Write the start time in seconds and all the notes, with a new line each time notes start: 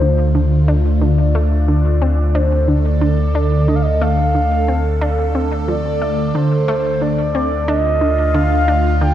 Already playing: D2 D3 A3 D4 F4 C5
0.02 D3
0.35 D3
0.68 D4
1.02 D3 D5
1.35 A3
1.68 D3
2.02 C4
2.35 D4 A4 C5
2.68 D3 D5
3.01 D3
3.35 D4
3.68 D3 D#5
3.75 F5
3.82 D#5
4.02 A3 F5
4.35 D3
4.68 C4
5.01 D4
5.35 C4
5.68 F3 D5
6.02 A3
6.28 D5
6.35 D2 D3 C5
6.68 A3
7.02 D3 D5
7.35 C4
7.68 D4 F4 D#5
8.01 D3
8.35 D3 F5
8.68 D4
9.01 D3 G5